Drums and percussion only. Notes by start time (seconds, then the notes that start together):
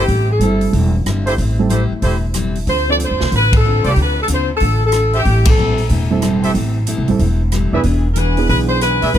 0.08 kick, open hi-hat
0.41 closed hi-hat
0.61 open hi-hat
0.73 kick, open hi-hat
1.06 cross-stick, closed hi-hat
1.27 open hi-hat
1.38 kick, open hi-hat
1.70 closed hi-hat
2.02 kick, open hi-hat
2.34 cross-stick, closed hi-hat
2.55 open hi-hat
2.67 kick, open hi-hat
3.00 closed hi-hat
3.20 snare
3.32 kick, open hi-hat
3.53 kick, ride
3.84 open hi-hat
3.96 kick, open hi-hat
4.28 closed hi-hat
4.60 kick, open hi-hat
4.92 cross-stick, closed hi-hat
5.13 open hi-hat
5.25 kick, open hi-hat
5.45 kick, ride
5.78 open hi-hat
5.89 kick, open hi-hat
6.22 cross-stick, closed hi-hat
6.43 open hi-hat
6.55 kick, open hi-hat
6.87 closed hi-hat
7.08 open hi-hat
7.19 kick, open hi-hat
7.52 cross-stick, closed hi-hat
7.83 kick, open hi-hat
8.16 closed hi-hat
8.37 open hi-hat
8.49 kick, open hi-hat
8.81 cross-stick, closed hi-hat
9.02 open hi-hat
9.14 kick, open hi-hat